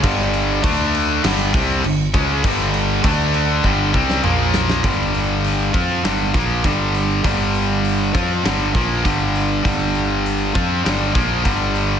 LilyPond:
<<
  \new Staff \with { instrumentName = "Distorted electric guitar" } { \clef bass \time 4/4 \key g \minor \tempo 4 = 100 <g, d g>4 <d a d'>4 <g, d g>8 <c g c'>8 <g, d>8 <cis aes cis'>8 | <g, d g>4 <d a d'>4 <g, d g>8 <c g c'>8 <bes, f bes>4 | <g, d g>4. <f c' f'>8 <g, d g>8 <bes, f bes>8 <g, d g>4 | <g, d g>4. <f c' f'>8 <g, d g>8 <bes, f bes>8 <g, d g>4 |
<g, d g>4. <f c' f'>8 <g, d g>8 <bes, f bes>8 <g, d g>4 | }
  \new Staff \with { instrumentName = "Overdriven electric guitar" } { \clef bass \time 4/4 \key g \minor <g, d g>4 <d a d'>4 <g, d g>8 <c g c'>8 <g, d>8 <cis aes cis'>8 | <g, d g>4 <d a d'>4 <g, d g>8 <c g c'>8 <bes, f bes>4 | <g, d g>4. <f c' f'>8 <g, d g>8 <bes, f bes>8 <g, d g>4 | <g, d g>4. <f c' f'>8 <g, d g>8 <bes, f bes>8 <g, d g>4 |
<g, d g>4. <f c' f'>8 <g, d g>8 <bes, f bes>8 <g, d g>4 | }
  \new Staff \with { instrumentName = "Fingered electric bass" } { \clef bass \time 4/4 \key g \minor g,,4 d,4 g,,8 c,8 g,,8 cis,8 | g,,4 d,4 g,,8 c,8 bes,,4 | g,,4. f,8 g,,8 bes,,8 g,,4 | g,,4. f,8 g,,8 bes,,8 g,,4 |
g,,4. f,8 g,,8 bes,,8 g,,4 | }
  \new DrumStaff \with { instrumentName = "Drums" } \drummode { \time 4/4 <cymc bd>16 sn16 cymc8 <cymc bd>8 cymc8 <cymc sn>8 <cymc bd>8 cymc8 <cymc bd>8 | <cymc bd>16 sn16 cymc8 <cymc bd>8 cymc8 bd8 bd16 sn16 toml8 sn16 sn16 | <hho bd>8 hho8 hho8 <hho bd>8 <hho sn>8 <hho bd>8 <hho bd>8 hho8 | <hho bd>8 hho8 hho8 <hho bd>8 <hho sn>8 <hho bd>8 <hho bd>8 hho8 |
<hho bd>8 hho8 hho8 <hho bd>8 <hho sn>8 <hho bd>8 <hho bd>8 hho8 | }
>>